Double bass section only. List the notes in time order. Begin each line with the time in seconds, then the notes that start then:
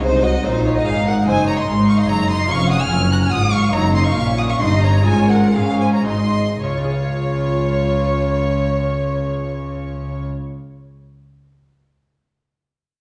0.03 C2
0.44 A#1
0.85 G#1
1.26 F#1
1.68 G#1
2.09 F#1
2.50 F1
2.91 F#1
3.32 G#1
3.74 F#1
4.16 A#1
4.60 G1
5.06 G#1
5.54 G#2
6.06 G#1
6.63 C#2